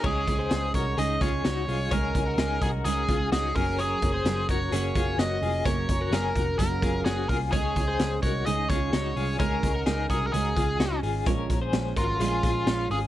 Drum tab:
CC |x-------|--------|--------|--------|
HH |-xxxxxxo|xxxxxxxo|xxxxxxxo|xxxxxxxo|
SD |--o---o-|--o---o-|--o---o-|--o---o-|
BD |oo-o-o--|oo-o-o-o|-o-o-o--|oo-ooo-o|

CC |--------|--------|--------|
HH |xxxxxxxo|xxxxxxxo|xxxxxxxo|
SD |--o---o-|--o---o-|--o---o-|
BD |oo-o-o--|oo-o-o--|oo-o-o--|